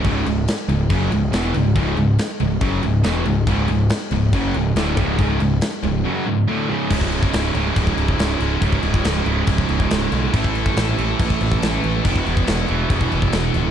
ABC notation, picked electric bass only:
X:1
M:4/4
L:1/8
Q:1/4=140
K:C#phr
V:1 name="Picked electric bass" clef=bass
C,,, C,,, z C,,, F,,, C,,, E,,, C,,, | C,,, C,,, z C,,, F,,, C,,, E,,, C,,, | C,,, C,,, z C,,, F,,, C,,, D,,, C,,, | C,,, C,,, z C,,, z4 |
C,,,2 C,,, C,,, C,,, C,,, C,,, C,,, | C,,, C,,, C,,, C,,, C,,, C,,, C,,, B,,, | A,,,2 A,,, A,,, A,,, A,,, A,,, A,,, | E,,, E,,, E,,, E,,, E,,, E,,, E,,, D,,, |]